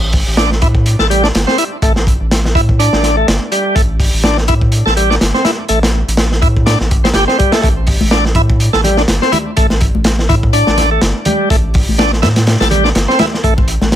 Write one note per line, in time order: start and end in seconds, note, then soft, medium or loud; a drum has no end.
0.00 0.23 A1 loud
0.13 kick medium
0.13 open hi-hat medium
0.27 0.64 A1 medium
0.37 0.50 D4 medium
0.37 snare loud
0.37 closed hi-hat medium
0.52 snare soft
0.62 0.96 A2 loud
0.62 0.68 E4 loud
0.62 kick medium
0.62 closed hi-hat medium
0.75 kick loud
0.86 closed hi-hat loud
0.99 1.31 A1 medium
0.99 1.07 A4 loud
0.99 snare soft
1.10 1.23 G3 medium
1.10 closed hi-hat medium
1.24 1.28 D4 loud
1.24 snare medium
1.35 1.46 G1 medium
1.35 snare loud
1.35 closed hi-hat medium
1.47 1.58 C4 medium
1.47 snare soft
1.58 1.64 E4 loud
1.58 closed hi-hat medium
1.82 2.16 A1 medium
1.82 1.92 A3 medium
1.82 kick loud
1.82 closed hi-hat medium
1.96 snare medium
2.07 kick medium
2.07 closed hi-hat medium
2.20 2.57 A1 medium
2.31 snare loud
2.31 closed hi-hat loud
2.45 snare medium
2.55 2.89 A2 loud
2.55 2.61 E4 loud
2.55 kick medium
2.55 closed hi-hat medium
2.69 kick medium
2.79 3.16 D4 medium
2.79 closed hi-hat medium
2.93 3.25 A1 medium
2.93 snare medium
3.03 snare soft
3.03 closed hi-hat medium
3.17 3.27 A3 medium
3.27 3.39 G1 medium
3.27 snare loud
3.27 closed hi-hat medium
3.52 3.75 G3 medium
3.52 closed hi-hat medium
3.75 4.10 A1 loud
3.75 3.82 A3 medium
3.75 kick loud
3.75 closed hi-hat medium
4.00 kick medium
4.00 open hi-hat medium
4.14 4.51 A1 medium
4.24 4.37 D4 medium
4.24 snare loud
4.24 closed hi-hat medium
4.38 snare soft
4.48 4.83 A2 loud
4.48 4.54 E4 loud
4.48 kick loud
4.48 closed hi-hat medium
4.61 kick loud
4.72 closed hi-hat medium
4.86 5.18 A1 medium
4.86 4.94 A4 loud
4.86 snare soft
4.97 5.10 G3 medium
4.97 closed hi-hat medium
5.10 5.15 D4 loud
5.10 snare soft
5.21 5.32 G1 medium
5.21 snare loud
5.21 closed hi-hat loud
5.34 5.45 C4 medium
5.34 snare soft
5.45 5.51 E4 loud
5.45 snare loud
5.45 closed hi-hat medium
5.68 6.03 A1 loud
5.68 5.79 A3 medium
5.68 closed hi-hat medium
5.83 snare loud
5.83 closed hi-hat medium
6.08 6.44 A1 medium
6.08 closed hi-hat medium
6.17 snare loud
6.17 closed hi-hat medium
6.32 snare soft
6.42 6.76 A2 loud
6.42 6.48 E4 loud
6.42 kick loud
6.42 closed hi-hat medium
6.57 kick medium
6.66 6.79 D4 medium
6.66 snare loud
6.66 closed hi-hat medium
6.80 7.12 A1 medium
6.80 snare soft
6.91 kick medium
6.91 closed hi-hat medium
7.04 7.09 C4 medium
7.04 snare loud
7.04 closed hi-hat medium
7.14 7.26 G1 medium
7.14 7.25 G4 medium
7.14 snare loud
7.14 closed hi-hat medium
7.28 7.38 C4 loud
7.28 snare soft
7.38 7.52 G3 medium
7.38 kick medium
7.38 closed hi-hat medium
7.52 7.61 A3 medium
7.52 snare loud
7.52 closed hi-hat medium
7.62 7.97 A1 loud
7.62 7.69 A3 medium
7.62 kick loud
7.62 closed hi-hat medium
7.87 kick medium
7.87 open hi-hat medium
8.01 8.36 A1 medium
8.01 high conga loud
8.11 8.24 D4 medium
8.11 snare loud
8.11 closed hi-hat medium
8.25 snare medium
8.35 8.69 A2 loud
8.35 8.42 E4 loud
8.35 kick medium
8.35 closed hi-hat medium
8.35 low conga medium
8.50 kick loud
8.50 muted conga soft
8.60 closed hi-hat medium
8.73 9.06 A1 medium
8.73 8.81 A4 loud
8.73 snare medium
8.73 high conga medium
8.84 8.97 G3 medium
8.84 closed hi-hat medium
8.84 low conga medium
8.97 9.02 D4 loud
8.97 snare medium
9.08 9.20 G1 medium
9.08 snare loud
9.08 closed hi-hat medium
9.22 9.32 C4 medium
9.22 snare soft
9.32 9.38 E4 loud
9.32 closed hi-hat medium
9.32 high conga medium
9.32 low conga medium
9.57 9.91 A1 loud
9.57 9.67 A3 medium
9.57 kick loud
9.57 closed hi-hat medium
9.70 snare medium
9.70 muted conga medium
9.81 kick loud
9.81 closed hi-hat medium
9.95 10.31 A1 medium
9.95 high conga medium
10.04 snare loud
10.04 closed hi-hat medium
10.19 snare medium
10.29 10.63 A2 loud
10.29 10.35 E4 loud
10.29 kick medium
10.29 closed hi-hat medium
10.29 low conga medium
10.43 kick loud
10.53 10.90 D4 medium
10.53 closed hi-hat medium
10.67 10.99 A1 medium
10.67 snare medium
10.67 high conga medium
10.77 snare soft
10.77 closed hi-hat medium
10.77 low conga medium
10.91 11.01 A3 medium
11.02 11.13 G1 medium
11.02 snare loud
11.02 closed hi-hat medium
11.25 11.49 G3 medium
11.25 closed hi-hat medium
11.25 high conga loud
11.25 low conga medium
11.50 11.84 A1 loud
11.50 11.56 A3 medium
11.50 kick loud
11.50 closed hi-hat medium
11.74 kick loud
11.74 open hi-hat medium
11.88 12.24 A1 medium
11.88 high conga medium
11.98 12.11 D4 medium
11.98 snare loud
11.98 closed hi-hat medium
12.13 snare soft
12.22 12.57 A2 loud
12.22 12.28 E4 loud
12.22 snare loud
12.22 closed hi-hat medium
12.22 low conga medium
12.36 snare loud
12.36 closed hi-hat medium
12.36 muted conga soft
12.47 snare loud
12.47 closed hi-hat medium
12.60 12.92 A1 medium
12.60 12.68 A4 loud
12.60 snare loud
12.60 closed hi-hat medium
12.60 high conga medium
12.71 12.84 G3 medium
12.71 closed hi-hat medium
12.71 low conga medium
12.84 12.89 D4 loud
12.84 snare soft
12.95 13.07 G1 medium
12.95 snare loud
12.95 closed hi-hat medium
13.08 13.19 C4 medium
13.08 snare soft
13.19 13.26 E4 loud
13.19 snare loud
13.19 closed hi-hat medium
13.19 high conga medium
13.19 low conga medium
13.34 snare soft
13.44 13.78 A1 loud
13.44 13.54 A3 medium
13.44 kick medium
13.44 closed hi-hat medium
13.58 kick loud
13.58 muted conga medium
13.68 closed hi-hat medium
13.81 13.96 A1 medium
13.81 snare soft
13.81 high conga loud
13.92 snare loud